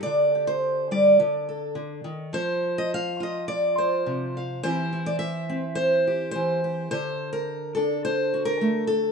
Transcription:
0, 0, Header, 1, 2, 480
1, 0, Start_track
1, 0, Tempo, 570342
1, 49, Time_signature, 4, 2, 24, 8
1, 7675, End_track
2, 0, Start_track
2, 0, Title_t, "Steel-string acoustic guitar"
2, 0, Program_c, 0, 25
2, 23, Note_on_c, 0, 74, 105
2, 50, Note_on_c, 0, 50, 70
2, 294, Note_on_c, 0, 67, 42
2, 395, Note_off_c, 0, 74, 0
2, 398, Note_on_c, 0, 72, 86
2, 764, Note_off_c, 0, 72, 0
2, 768, Note_on_c, 0, 55, 62
2, 773, Note_on_c, 0, 74, 77
2, 982, Note_off_c, 0, 50, 0
2, 982, Note_off_c, 0, 55, 0
2, 984, Note_off_c, 0, 67, 0
2, 1006, Note_on_c, 0, 50, 73
2, 1252, Note_on_c, 0, 69, 45
2, 1464, Note_off_c, 0, 50, 0
2, 1474, Note_on_c, 0, 50, 59
2, 1716, Note_off_c, 0, 50, 0
2, 1719, Note_on_c, 0, 51, 58
2, 1947, Note_off_c, 0, 69, 0
2, 1960, Note_on_c, 0, 53, 69
2, 1968, Note_off_c, 0, 51, 0
2, 1969, Note_on_c, 0, 72, 94
2, 1977, Note_off_c, 0, 74, 0
2, 2342, Note_on_c, 0, 75, 85
2, 2460, Note_off_c, 0, 75, 0
2, 2475, Note_on_c, 0, 77, 97
2, 2695, Note_on_c, 0, 65, 58
2, 2707, Note_off_c, 0, 77, 0
2, 2719, Note_on_c, 0, 75, 81
2, 2815, Note_off_c, 0, 72, 0
2, 2925, Note_off_c, 0, 75, 0
2, 2929, Note_on_c, 0, 74, 95
2, 3184, Note_on_c, 0, 72, 79
2, 3420, Note_on_c, 0, 48, 61
2, 3656, Note_off_c, 0, 74, 0
2, 3677, Note_on_c, 0, 77, 48
2, 3870, Note_off_c, 0, 65, 0
2, 3880, Note_off_c, 0, 77, 0
2, 3890, Note_off_c, 0, 72, 0
2, 3892, Note_off_c, 0, 53, 0
2, 3900, Note_off_c, 0, 48, 0
2, 3900, Note_on_c, 0, 72, 107
2, 3905, Note_on_c, 0, 52, 70
2, 3911, Note_on_c, 0, 60, 46
2, 3918, Note_on_c, 0, 64, 48
2, 3925, Note_on_c, 0, 67, 50
2, 4136, Note_off_c, 0, 64, 0
2, 4146, Note_on_c, 0, 64, 44
2, 4258, Note_off_c, 0, 67, 0
2, 4262, Note_on_c, 0, 74, 94
2, 4363, Note_off_c, 0, 74, 0
2, 4367, Note_on_c, 0, 76, 101
2, 4621, Note_off_c, 0, 60, 0
2, 4624, Note_on_c, 0, 60, 58
2, 4737, Note_off_c, 0, 72, 0
2, 4843, Note_on_c, 0, 72, 100
2, 5090, Note_off_c, 0, 76, 0
2, 5112, Note_on_c, 0, 67, 45
2, 5303, Note_off_c, 0, 72, 0
2, 5313, Note_on_c, 0, 72, 92
2, 5337, Note_off_c, 0, 52, 0
2, 5347, Note_on_c, 0, 52, 66
2, 5579, Note_off_c, 0, 67, 0
2, 5589, Note_on_c, 0, 67, 47
2, 5787, Note_off_c, 0, 60, 0
2, 5787, Note_off_c, 0, 64, 0
2, 5790, Note_off_c, 0, 52, 0
2, 5802, Note_off_c, 0, 72, 0
2, 5815, Note_on_c, 0, 72, 107
2, 5820, Note_off_c, 0, 67, 0
2, 5822, Note_on_c, 0, 50, 74
2, 6162, Note_off_c, 0, 72, 0
2, 6166, Note_on_c, 0, 70, 82
2, 6517, Note_off_c, 0, 70, 0
2, 6520, Note_on_c, 0, 69, 75
2, 6537, Note_on_c, 0, 62, 60
2, 6764, Note_off_c, 0, 69, 0
2, 6772, Note_on_c, 0, 72, 94
2, 7017, Note_on_c, 0, 66, 44
2, 7111, Note_off_c, 0, 72, 0
2, 7114, Note_on_c, 0, 70, 85
2, 7249, Note_on_c, 0, 57, 63
2, 7465, Note_off_c, 0, 70, 0
2, 7468, Note_on_c, 0, 69, 85
2, 7675, Note_off_c, 0, 50, 0
2, 7675, Note_off_c, 0, 57, 0
2, 7675, Note_off_c, 0, 62, 0
2, 7675, Note_off_c, 0, 66, 0
2, 7675, Note_off_c, 0, 69, 0
2, 7675, End_track
0, 0, End_of_file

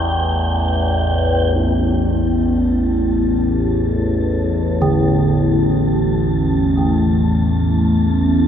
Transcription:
0, 0, Header, 1, 5, 480
1, 0, Start_track
1, 0, Tempo, 500000
1, 8137, End_track
2, 0, Start_track
2, 0, Title_t, "Synth texture"
2, 0, Program_c, 0, 99
2, 0, Note_on_c, 0, 79, 72
2, 1502, Note_on_c, 0, 81, 78
2, 1519, Note_off_c, 0, 79, 0
2, 8137, Note_off_c, 0, 81, 0
2, 8137, End_track
3, 0, Start_track
3, 0, Title_t, "Ambient pad"
3, 0, Program_c, 1, 92
3, 0, Note_on_c, 1, 57, 71
3, 0, Note_on_c, 1, 64, 91
3, 0, Note_on_c, 1, 71, 57
3, 4964, Note_on_c, 1, 81, 76
3, 8137, Note_off_c, 1, 57, 0
3, 8137, Note_off_c, 1, 64, 0
3, 8137, Note_off_c, 1, 71, 0
3, 8137, Note_off_c, 1, 81, 0
3, 8137, End_track
4, 0, Start_track
4, 0, Title_t, "Bronze metallophone"
4, 0, Program_c, 2, 11
4, 4624, Note_on_c, 2, 50, 61
4, 8137, Note_off_c, 2, 50, 0
4, 8137, End_track
5, 0, Start_track
5, 0, Title_t, "Synth drone"
5, 0, Program_c, 3, 95
5, 0, Note_on_c, 3, 33, 73
5, 0, Note_on_c, 3, 40, 64
5, 1482, Note_off_c, 3, 40, 0
5, 1488, Note_off_c, 3, 33, 0
5, 1494, Note_on_c, 3, 40, 76
5, 1499, Note_on_c, 3, 33, 66
5, 8137, Note_off_c, 3, 33, 0
5, 8137, Note_off_c, 3, 40, 0
5, 8137, End_track
0, 0, End_of_file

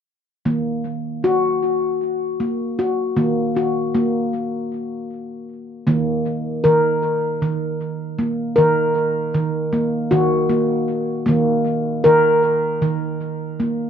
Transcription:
0, 0, Header, 1, 2, 480
1, 0, Start_track
1, 0, Key_signature, -6, "minor"
1, 0, Tempo, 773196
1, 289, Time_signature, 7, 3, 24, 8
1, 8628, End_track
2, 0, Start_track
2, 0, Title_t, "Handpan"
2, 0, Program_c, 0, 114
2, 282, Note_on_c, 0, 51, 55
2, 284, Note_on_c, 0, 58, 57
2, 767, Note_off_c, 0, 58, 0
2, 770, Note_on_c, 0, 66, 60
2, 1250, Note_off_c, 0, 66, 0
2, 1490, Note_on_c, 0, 58, 52
2, 1730, Note_off_c, 0, 58, 0
2, 1731, Note_on_c, 0, 66, 56
2, 1942, Note_off_c, 0, 51, 0
2, 1965, Note_on_c, 0, 58, 62
2, 1966, Note_on_c, 0, 51, 55
2, 1971, Note_off_c, 0, 66, 0
2, 2208, Note_off_c, 0, 58, 0
2, 2213, Note_on_c, 0, 66, 51
2, 2450, Note_on_c, 0, 58, 65
2, 2452, Note_off_c, 0, 66, 0
2, 2930, Note_off_c, 0, 58, 0
2, 3623, Note_off_c, 0, 51, 0
2, 3642, Note_on_c, 0, 58, 60
2, 3646, Note_on_c, 0, 51, 82
2, 4030, Note_off_c, 0, 51, 0
2, 4121, Note_on_c, 0, 70, 65
2, 4126, Note_off_c, 0, 58, 0
2, 4127, Note_on_c, 0, 51, 71
2, 4510, Note_off_c, 0, 51, 0
2, 4604, Note_off_c, 0, 70, 0
2, 4608, Note_on_c, 0, 51, 71
2, 5082, Note_on_c, 0, 58, 59
2, 5182, Note_off_c, 0, 51, 0
2, 5313, Note_on_c, 0, 70, 65
2, 5324, Note_off_c, 0, 58, 0
2, 5328, Note_on_c, 0, 51, 79
2, 5710, Note_off_c, 0, 51, 0
2, 5799, Note_off_c, 0, 70, 0
2, 5801, Note_on_c, 0, 51, 74
2, 6038, Note_on_c, 0, 58, 61
2, 6185, Note_off_c, 0, 51, 0
2, 6276, Note_on_c, 0, 66, 70
2, 6282, Note_off_c, 0, 58, 0
2, 6282, Note_on_c, 0, 51, 74
2, 6515, Note_on_c, 0, 58, 60
2, 6521, Note_off_c, 0, 66, 0
2, 6858, Note_off_c, 0, 51, 0
2, 6982, Note_off_c, 0, 58, 0
2, 6990, Note_on_c, 0, 58, 72
2, 7003, Note_on_c, 0, 51, 84
2, 7387, Note_off_c, 0, 51, 0
2, 7475, Note_on_c, 0, 70, 69
2, 7477, Note_off_c, 0, 58, 0
2, 7485, Note_on_c, 0, 51, 77
2, 7868, Note_off_c, 0, 51, 0
2, 7959, Note_off_c, 0, 70, 0
2, 7959, Note_on_c, 0, 51, 74
2, 8441, Note_on_c, 0, 58, 57
2, 8535, Note_off_c, 0, 51, 0
2, 8628, Note_off_c, 0, 58, 0
2, 8628, End_track
0, 0, End_of_file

